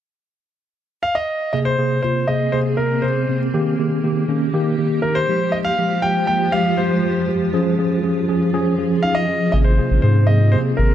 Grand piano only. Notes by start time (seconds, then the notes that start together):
1.03 F5
1.15 D#5
1.53 D#5
1.65 C5
2.02 C5
2.28 D#5
2.52 C5
2.77 A#4
3.02 C5
5.02 A#4
5.15 C5
5.52 D#5
5.65 F5
6.02 G5
6.27 G5
6.52 F5
6.77 C5
9.03 F5
9.15 D#5
9.52 D#5
9.64 C5
10.02 C5
10.27 D#5
10.52 C5
10.77 A#4